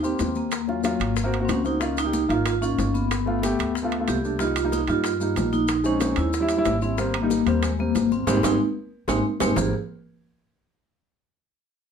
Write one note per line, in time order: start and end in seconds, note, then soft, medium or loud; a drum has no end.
0.00 0.16 D#2 medium
0.00 0.48 A#3 medium
0.00 0.49 C4 medium
0.00 high bongo soft
0.00 high conga soft
0.00 maracas medium
0.04 0.37 C4 medium
0.04 0.49 G4 medium
0.19 0.95 D#2 medium
0.19 high bongo soft
0.19 low bongo medium
0.19 high conga medium
0.19 high timbale medium
0.19 low timbale soft
0.19 maracas medium
0.35 1.48 A#3 medium
0.35 high conga medium
0.35 maracas soft
0.52 high bongo medium
0.52 high conga soft
0.52 high timbale medium
0.52 maracas medium
0.67 0.79 F#3 medium
0.67 0.79 C#4 medium
0.67 0.80 F4 medium
0.67 high bongo soft
0.67 high conga soft
0.83 1.12 F#3 medium
0.83 1.12 C#4 medium
0.83 1.13 F4 medium
0.83 high bongo medium
0.83 high conga medium
0.83 high timbale medium
0.83 maracas medium
1.00 1.45 G#1 medium
1.00 high bongo soft
1.00 high conga soft
1.00 high timbale medium
1.00 maracas soft
1.16 high bongo medium
1.16 high conga soft
1.16 maracas medium
1.24 1.36 A#3 medium
1.24 1.36 C4 medium
1.24 1.37 F#4 medium
1.32 high bongo soft
1.32 high conga soft
1.32 high timbale medium
1.40 1.57 A#3 medium
1.40 1.58 C4 medium
1.40 1.58 F#4 medium
1.45 2.24 C#2 medium
1.45 1.49 C4 medium
1.45 high conga medium
1.45 maracas medium
1.49 1.64 C#4 medium
1.49 high bongo soft
1.49 low bongo medium
1.49 high timbale medium
1.49 low timbale medium
1.64 1.76 A#3 medium
1.64 1.76 C4 medium
1.64 1.82 D#4 medium
1.64 1.77 F#4 medium
1.64 high conga medium
1.64 maracas soft
1.80 1.98 A#3 medium
1.80 1.98 C#4 medium
1.80 1.98 D#4 medium
1.80 1.99 F4 medium
1.80 high bongo medium
1.80 maracas medium
1.97 2.31 D#4 loud
1.97 high bongo soft
1.97 high conga soft
1.97 high timbale medium
1.97 maracas medium
2.04 2.22 A#3 medium
2.04 2.22 D#4 medium
2.04 2.23 G4 medium
2.13 high bongo medium
2.13 high conga loud
2.13 maracas medium
2.29 2.74 G#1 medium
2.29 2.52 A#3 medium
2.29 2.52 D#4 medium
2.29 2.46 F4 medium
2.29 2.53 F4 medium
2.29 high bongo soft
2.29 high conga soft
2.29 high timbale medium
2.29 maracas soft
2.46 2.54 F4 medium
2.46 high bongo medium
2.46 high conga soft
2.46 high timbale medium
2.46 maracas medium
2.61 3.07 A#3 medium
2.61 2.95 C#4 medium
2.61 3.07 D#4 medium
2.61 3.08 F4 medium
2.61 high bongo soft
2.61 high conga soft
2.61 maracas medium
2.78 3.53 G1 medium
2.78 high bongo soft
2.78 low bongo medium
2.78 high conga medium
2.78 high timbale soft
2.78 maracas medium
2.94 4.11 B3 medium
2.94 high conga medium
2.94 maracas soft
3.11 high bongo medium
3.11 high conga soft
3.11 high timbale medium
3.11 maracas medium
3.26 3.38 A3 medium
3.26 3.38 B3 medium
3.26 3.38 F4 medium
3.26 high bongo soft
3.26 high conga soft
3.42 3.71 A3 medium
3.42 3.71 B3 medium
3.42 3.72 G4 medium
3.42 high bongo medium
3.42 high conga medium
3.42 high timbale medium
3.42 maracas medium
3.59 4.04 D2 medium
3.59 high bongo soft
3.59 high conga soft
3.59 high timbale medium
3.59 maracas soft
3.75 high bongo medium
3.75 high conga soft
3.75 maracas medium
3.83 3.94 A3 medium
3.83 3.95 B3 medium
3.83 3.95 F4 medium
3.92 high bongo soft
3.92 high conga soft
3.92 high timbale medium
3.99 4.16 A3 medium
3.99 4.17 B3 medium
3.99 4.17 F4 medium
4.08 4.83 C2 medium
4.08 4.41 G4 medium
4.08 high bongo soft
4.08 low bongo medium
4.08 high conga medium
4.08 high timbale medium
4.08 maracas medium
4.23 4.35 A3 medium
4.23 4.35 B3 medium
4.23 4.36 D4 medium
4.23 maracas soft
4.39 4.56 G3 medium
4.39 4.57 A#3 medium
4.39 4.57 D#4 medium
4.39 4.55 F4 medium
4.39 high bongo medium
4.39 high conga soft
4.39 maracas medium
4.55 4.73 F4 medium
4.55 high bongo soft
4.55 high conga soft
4.55 high timbale medium
4.55 maracas medium
4.63 4.80 G3 medium
4.63 4.81 A#3 medium
4.63 4.81 D#4 medium
4.72 4.89 D#4 medium
4.72 high bongo soft
4.72 high conga medium
4.72 maracas medium
4.87 5.33 G2 loud
4.87 5.11 G3 medium
4.87 5.11 A#3 medium
4.87 5.12 D#4 medium
4.87 5.55 F4 loud
4.87 high bongo soft
4.87 high conga soft
4.87 high timbale medium
4.87 maracas soft
5.04 high bongo medium
5.04 high conga soft
5.04 high timbale medium
5.04 maracas medium
5.20 5.65 G3 medium
5.20 5.66 A#3 medium
5.20 5.66 D#4 medium
5.20 high bongo soft
5.20 high conga soft
5.20 maracas soft
5.36 6.12 A#1 medium
5.36 high bongo soft
5.36 low bongo medium
5.36 high conga medium
5.36 high timbale medium
5.36 low timbale medium
5.36 maracas medium
5.53 5.86 D#4 medium
5.53 high conga medium
5.53 maracas soft
5.68 high bongo medium
5.68 high conga soft
5.68 high timbale medium
5.68 maracas medium
5.84 5.96 G#3 medium
5.84 5.96 C4 medium
5.84 5.96 C#4 medium
5.84 6.19 C#4 medium
5.84 5.97 D#4 medium
5.84 high bongo soft
5.84 high conga soft
5.84 maracas medium
6.00 6.29 G#3 medium
6.00 6.29 C4 medium
6.00 6.29 C#4 medium
6.00 6.30 D#4 medium
6.00 high bongo medium
6.00 high conga medium
6.00 high timbale medium
6.00 maracas medium
6.16 6.62 D#2 loud
6.16 6.63 E4 medium
6.16 high bongo soft
6.16 high conga soft
6.16 high timbale medium
6.16 maracas soft
6.33 high bongo medium
6.33 high conga soft
6.33 maracas medium
6.40 6.52 G3 medium
6.40 6.53 C#4 medium
6.40 6.53 E4 medium
6.49 high bongo soft
6.49 high conga soft
6.49 high timbale medium
6.49 maracas medium
6.56 6.74 G3 medium
6.56 6.75 C#4 medium
6.56 6.75 E4 loud
6.65 7.41 G#1 medium
6.65 high bongo soft
6.65 low bongo medium
6.65 high conga medium
6.65 high timbale medium
6.65 maracas medium
6.81 6.93 G3 medium
6.81 7.12 C4 medium
6.81 6.93 C#4 medium
6.81 6.94 E4 medium
6.81 maracas soft
6.97 7.15 G3 medium
6.97 7.15 A#3 medium
6.97 7.15 C4 medium
6.97 high bongo medium
6.97 high conga soft
6.97 maracas medium
7.14 7.48 A#3 medium
7.14 high bongo soft
7.14 high conga soft
7.14 high timbale loud
7.21 7.39 G3 medium
7.21 7.39 A#3 medium
7.21 7.40 D#4 medium
7.30 high bongo medium
7.30 high conga medium
7.30 maracas medium
7.45 7.92 D#2 medium
7.45 7.69 G3 medium
7.45 7.69 A#3 medium
7.45 7.70 C4 medium
7.45 7.64 C4 medium
7.45 high bongo soft
7.45 high conga soft
7.45 high timbale medium
7.45 maracas soft
7.63 7.79 G#3 medium
7.63 high bongo medium
7.63 high conga soft
7.63 high timbale medium
7.63 maracas medium
7.79 8.24 G3 medium
7.79 8.24 A#3 medium
7.79 8.13 A#3 medium
7.79 8.25 C4 medium
7.79 high bongo soft
7.79 high conga soft
7.95 8.25 G#1 medium
7.95 high bongo soft
7.95 low bongo medium
7.95 high conga medium
7.95 high timbale medium
7.95 low timbale medium
7.95 maracas medium
8.12 8.27 C4 medium
8.12 high conga medium
8.12 maracas soft
8.27 8.39 G#1 loud
8.27 8.37 G3 loud
8.27 8.38 G#3 loud
8.27 8.38 G#3 medium
8.27 8.38 C4 loud
8.27 8.38 C4 medium
8.27 8.38 D#4 medium
8.27 high bongo medium
8.27 high conga medium
8.27 high timbale medium
8.27 maracas loud
8.43 8.55 G#1 medium
8.43 8.54 G3 medium
8.43 8.54 G#3 medium
8.43 8.55 G#3 medium
8.43 8.54 C4 medium
8.43 8.55 C4 loud
8.43 8.55 D#4 medium
8.43 high bongo loud
8.43 high conga medium
8.43 high timbale loud
8.43 maracas loud
9.08 9.20 G#1 medium
9.08 9.18 G3 medium
9.08 9.18 G#3 medium
9.08 9.19 G#3 medium
9.08 9.18 C4 medium
9.08 9.19 C4 medium
9.08 9.18 D#4 medium
9.08 high bongo medium
9.08 high conga medium
9.08 high timbale medium
9.08 maracas medium
9.40 9.53 G#1 medium
9.40 9.51 G3 medium
9.40 9.51 G#3 medium
9.40 9.51 C4 medium
9.40 9.51 D#4 medium
9.40 high bongo medium
9.40 high conga medium
9.40 high timbale loud
9.40 maracas loud
9.56 9.72 G#1 medium
9.56 9.72 G3 medium
9.56 9.72 A#3 medium
9.56 9.72 C4 medium
9.56 9.72 G#4 medium
9.56 low bongo loud
9.56 low conga loud
9.56 low timbale medium
9.56 maracas loud